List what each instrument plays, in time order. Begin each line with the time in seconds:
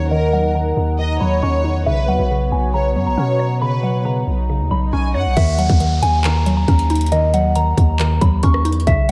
Already playing: 808-style bass D#2, synth pluck D#3 F#3 C#4 D#4, analog synth pad D#3 F#5
0.11 synth pluck D#3, analog synth pad D#4, violin section A#4, synth bell D#5
0.33 synth pluck F#3, synth bell F#5
0.55 synth pluck D#3, synth bell A#5
0.77 808-style bass D#2
0.99 synth pluck D#3, violin section D#5
1.21 808-style bass D#2, synth pluck F#3, violin section C#5, synth bell B5
1.42 808-style bass D#2, synth pluck C#4, synth bell C#6
1.64 808-style bass E2, synth pluck D#4
1.86 808-style bass B1, synth pluck C#3, analog synth pad B3 F#4 C#5, violin section B4, synth bell E5
2.08 808-style bass D#2, synth pluck F#3, synth bell F#5
2.19 808-style bass B1
2.31 synth pluck C#3
2.52 808-style bass B1, synth bell G#5
2.74 synth pluck C#3, violin section C#5, synth bell A#5
2.96 808-style bass F#2, synth pluck F#3, violin section C#5
3.07 808-style bass B1, synth bell A#5
3.17 808-style bass B2, synth pluck C#4
3.39 synth pluck C#5
3.61 synth pluck C#3, violin section B4, synth bell B5, swell
3.83 synth pluck F#3, synth bell F#5
4.05 synth pluck C#3, synth bell A#5
4.27 808-style bass B1
4.49 synth pluck C#3
4.60 808-style bass D#2
4.71 808-style bass B1, synth pluck F#3, synth bell B5
4.93 808-style bass B1, synth pluck C#4, violin section G#5, synth bell C#6
5.14 808-style bass F#2, synth pluck C#5, violin section F#5
5.26 808-style bass B1
5.37 808-style bass D#2, synth pluck D#3, synth bell E5, kick, closed hi-hat, crash, downlifter
5.58 synth pluck F#3, synth bell F#5, closed hi-hat
5.70 808-style bass D#2, kick, closed hi-hat
5.80 synth pluck D#3, closed hi-hat
6.02 808-style bass D#2, synth bell G#5, closed hi-hat
6.24 synth pluck D#3, synth bell A#5, clap, closed hi-hat
6.46 synth pluck F#3, closed hi-hat
6.57 synth bell A#5
6.68 808-style bass D#2, synth pluck C#4, kick, closed hi-hat
6.79 closed hi-hat
6.90 synth pluck D#4, closed hi-hat
6.95 closed hi-hat
7.01 closed hi-hat
7.06 closed hi-hat
7.12 synth pluck D#3, synth bell D#5, closed hi-hat
7.34 synth pluck F#3, synth bell F#5, closed hi-hat
7.55 synth pluck D#3, synth bell A#5, closed hi-hat
7.78 808-style bass D#2, kick, closed hi-hat
7.99 synth pluck D#3, clap, closed hi-hat
8.21 808-style bass D#2, synth pluck F#3, synth bell B5, kick, closed hi-hat
8.43 808-style bass D#2, synth pluck C#4, synth bell C#6, kick, closed hi-hat
8.54 cross-stick
8.65 808-style bass E2, synth pluck D#4, closed hi-hat
8.72 closed hi-hat
8.80 closed hi-hat
8.87 808-style bass B1, synth pluck C#3, synth bell E5, kick, closed hi-hat